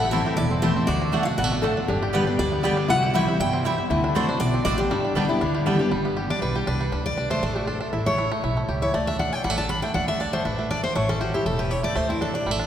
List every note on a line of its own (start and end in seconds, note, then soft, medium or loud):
0.00 0.22 A1 medium
0.00 0.35 A2 medium
0.00 0.11 A3 medium
0.00 0.35 E4 medium
0.00 0.91 A4 loud
0.00 0.10 F#5 loud
0.11 0.36 E3 medium
0.11 0.48 A3 medium
0.11 0.37 A3 medium
0.11 0.22 C4 medium
0.11 0.37 C4 loud
0.11 0.22 E4 medium
0.11 0.37 E4 loud
0.11 0.22 C5 medium
0.11 0.35 E5 medium
0.11 0.22 A5 medium
0.26 0.61 G4 medium
0.37 0.73 E1 medium
0.37 0.86 E2 medium
0.37 0.74 E4 medium
0.37 0.63 D5 loud
0.51 0.75 C4 medium
0.62 0.87 E3 medium
0.62 0.87 A3 medium
0.62 0.72 C4 medium
0.62 0.87 C4 medium
0.62 0.72 E4 medium
0.62 0.87 E4 medium
0.62 0.88 G4 medium
0.62 0.88 C5 medium
0.62 0.73 C5 medium
0.62 0.73 A5 medium
0.76 0.88 C4 medium
0.87 1.23 D2 medium
0.87 1.11 D3 medium
0.87 1.00 D4 medium
0.87 1.59 F#4 loud
0.87 1.24 D5 medium
1.02 1.26 D4 medium
1.12 1.26 D3 medium
1.12 1.22 A3 medium
1.12 1.38 A3 medium
1.12 1.26 A3 medium
1.12 1.26 D4 medium
1.12 1.23 F#4 medium
1.12 1.25 F#4 medium
1.12 1.23 D5 medium
1.12 1.23 F#5 loud
1.23 1.51 D4 medium
1.23 1.38 F#4 medium
1.23 1.26 F5 medium
1.23 1.37 F#5 medium
1.27 1.38 D4 soft
1.38 1.73 A1 medium
1.38 1.63 B2 medium
1.38 1.44 G3 medium
1.38 1.74 F#5 medium
1.44 1.63 A3 medium
1.52 1.76 D4 medium
1.62 1.87 A2 medium
1.62 1.73 A3 medium
1.62 1.89 A3 medium
1.62 1.73 F#4 medium
1.62 1.89 A4 medium
1.62 1.73 D5 medium
1.62 1.73 F#5 medium
1.77 1.88 D4 medium
1.88 2.24 G1 loud
1.88 2.37 G2 medium
1.88 2.25 D4 medium
1.88 2.62 G4 medium
2.02 2.37 G4 medium
2.13 2.26 D3 medium
2.13 2.27 G3 medium
2.13 2.38 G3 medium
2.13 2.23 B3 medium
2.13 2.27 B3 medium
2.13 2.23 G4 medium
2.13 2.25 G4 medium
2.13 2.38 B4 medium
2.13 2.23 D5 medium
2.13 2.24 G5 medium
2.27 2.39 B3 soft
2.27 2.62 D4 medium
2.27 2.38 G4 medium
2.39 2.74 D2 medium
2.39 2.62 D3 medium
2.39 2.63 G3 medium
2.39 2.63 D5 medium
2.52 2.87 B3 medium
2.63 2.88 D3 medium
2.63 2.89 G3 medium
2.63 2.88 G3 medium
2.63 2.73 B3 medium
2.63 2.88 B3 medium
2.63 2.88 G4 medium
2.63 2.74 G4 medium
2.63 2.89 G4 medium
2.63 2.74 D5 medium
2.63 2.88 D5 medium
2.63 2.74 G5 medium
2.77 2.89 D4 medium
2.88 3.24 C2 loud
2.88 3.38 C3 medium
2.88 3.25 E4 medium
2.88 3.61 F#4 loud
2.88 3.15 F#5 loud
3.03 3.38 G4 medium
3.14 3.27 E3 medium
3.14 3.28 G3 medium
3.14 3.39 G3 medium
3.14 3.24 C4 medium
3.14 3.28 C4 medium
3.14 3.24 E4 loud
3.14 3.26 E4 loud
3.14 3.24 C5 loud
3.14 3.39 E5 loud
3.14 3.24 G5 loud
3.27 3.40 C4 medium
3.27 3.39 E4 medium
3.27 3.63 E4 medium
3.40 3.75 G2 medium
3.40 3.64 B2 medium
3.40 3.64 G3 medium
3.40 3.64 G5 loud
3.53 3.88 C4 medium
3.61 3.89 C3 medium
3.61 3.90 G3 medium
3.61 3.74 C4 medium
3.61 3.90 E4 loud
3.61 3.75 E4 medium
3.66 3.75 C5 medium
3.66 3.84 E5 medium
3.66 3.75 G5 medium
3.78 3.90 E4 medium
3.90 4.25 D2 medium
3.90 4.14 D3 medium
3.90 4.15 A3 medium
3.90 4.94 E4 medium
4.04 4.28 D4 medium
4.15 4.28 D3 medium
4.15 4.52 A3 medium
4.15 4.29 A3 medium
4.15 4.25 C4 medium
4.15 4.29 C4 medium
4.15 4.25 F#4 medium
4.15 4.27 F#4 medium
4.15 4.39 C5 medium
4.15 4.25 D5 medium
4.15 4.25 A5 loud
4.28 4.41 C4 soft
4.28 4.40 D4 medium
4.28 4.40 F#4 medium
4.40 4.62 B1 medium
4.40 4.65 B2 medium
4.40 4.66 D4 medium
4.40 4.64 D5 loud
4.54 4.78 C4 medium
4.65 4.87 A1 medium
4.65 4.90 A2 medium
4.65 4.75 C4 medium
4.65 5.04 D4 medium
4.65 4.75 F#4 medium
4.65 4.79 D5 loud
4.65 4.75 D5 loud
4.65 4.76 A5 medium
4.78 4.91 C4 medium
4.78 5.75 G4 medium
4.91 5.26 G1 medium
4.91 5.39 G2 medium
4.91 5.15 G3 medium
4.91 5.15 D4 medium
5.05 5.39 D4 medium
5.15 5.29 D3 medium
5.15 5.52 G3 medium
5.15 5.29 G3 medium
5.15 5.25 B3 medium
5.15 5.29 B3 medium
5.15 5.28 D4 medium
5.15 5.26 G4 medium
5.15 5.28 G4 loud
5.15 5.26 D5 medium
5.15 5.26 G5 medium
5.29 5.64 B3 medium
5.29 5.42 B3 medium
5.29 5.67 E4 medium
5.29 5.41 G4 medium
5.41 5.77 D2 medium
5.41 5.65 D3 medium
5.41 5.77 D4 medium
5.55 5.89 G4 medium
5.66 5.79 D3 medium
5.66 5.79 G3 medium
5.66 5.90 G3 medium
5.66 5.76 B3 medium
5.66 5.80 B3 medium
5.66 5.79 D4 medium
5.66 5.76 G4 medium
5.66 5.78 G4 medium
5.66 5.76 D5 medium
5.66 5.76 G5 medium
5.79 5.92 B3 soft
5.79 5.92 D4 medium
5.79 5.91 G4 medium
5.91 6.27 G1 medium
5.91 6.27 G3 medium
6.05 6.40 B3 medium
6.17 6.53 G4 medium
6.30 6.65 D4 medium
6.30 6.42 D5 medium
6.42 6.63 B1 medium
6.42 6.78 G3 medium
6.42 6.55 B4 medium
6.55 6.67 G4 soft
6.55 6.90 G4 medium
6.67 6.89 C2 medium
6.67 6.91 D4 medium
6.67 7.03 B4 medium
6.81 6.93 G3 medium
6.92 7.27 D2 loud
6.92 7.16 D4 medium
7.06 7.29 D5 loud
7.17 7.42 D4 medium
7.30 7.55 A3 medium
7.30 7.42 C5 medium
7.42 7.78 A1 medium
7.42 7.66 D4 medium
7.42 7.56 A4 medium
7.56 8.06 A3 medium
7.56 7.68 F#4 medium
7.67 7.79 D4 medium
7.67 8.07 A4 medium
7.81 7.92 D4 medium
7.93 8.28 A1 medium
7.93 8.17 E4 medium
8.06 8.31 A3 medium
8.06 8.30 C#5 loud
8.18 8.43 E4 medium
8.32 8.56 A3 medium
8.43 8.65 B1 medium
8.43 8.80 E4 medium
8.57 8.93 A3 medium
8.69 8.90 C#2 medium
8.69 8.94 G4 medium
8.82 8.94 E4 medium
8.82 8.94 C#5 medium
8.94 9.29 D2 medium
8.94 9.44 A3 medium
8.94 9.07 D5 medium
9.07 9.19 D4 medium
9.07 9.19 E5 medium
9.19 9.31 D4 medium
9.19 9.33 F#5 medium
9.33 9.57 D4 medium
9.33 9.44 G5 loud
9.44 9.80 A1 medium
9.44 9.50 G3 medium
9.44 9.57 F#5 medium
9.50 9.70 A3 medium
9.58 9.69 D4 medium
9.58 9.69 A5 medium
9.69 9.94 D4 medium
9.69 9.82 B5 loud
9.82 10.08 A3 medium
9.82 9.94 G5 medium
9.94 10.30 D2 medium
9.94 10.19 D4 medium
9.94 10.07 F#5 medium
10.08 10.33 A3 medium
10.08 10.20 E5 medium
10.20 10.44 D4 medium
10.20 10.33 D5 medium
10.33 10.58 A3 medium
10.33 10.45 C5 medium
10.45 10.80 A1 medium
10.45 10.70 D4 medium
10.45 10.69 B4 medium
10.59 10.96 A3 medium
10.71 10.83 D4 medium
10.71 10.83 D5 medium
10.84 10.96 D4 medium
10.84 10.95 C5 medium
10.95 11.30 A1 loud
10.95 11.32 A3 medium
10.95 11.08 C#5 medium
11.09 11.44 C#4 medium
11.09 11.21 A4 medium
11.21 11.34 F#4 medium
11.21 11.56 G4 medium
11.34 11.69 E4 medium
11.34 11.46 G4 medium
11.46 11.81 E1 medium
11.46 11.82 A3 medium
11.46 11.59 A4 medium
11.59 11.94 G4 medium
11.59 11.71 B4 medium
11.71 11.96 E4 medium
11.71 11.84 C#5 medium
11.83 11.94 A3 medium
11.83 11.96 D5 loud
11.95 12.31 D2 loud
11.95 12.32 A3 medium
11.95 12.09 C5 medium
12.09 12.44 C4 medium
12.09 12.21 E4 medium
12.21 12.33 D4 medium
12.21 12.34 A4 medium
12.34 12.58 D4 medium
12.34 12.67 D5 medium
12.46 12.67 A1 medium
12.46 12.51 G3 medium
12.51 12.67 A3 medium
12.59 12.67 D4 medium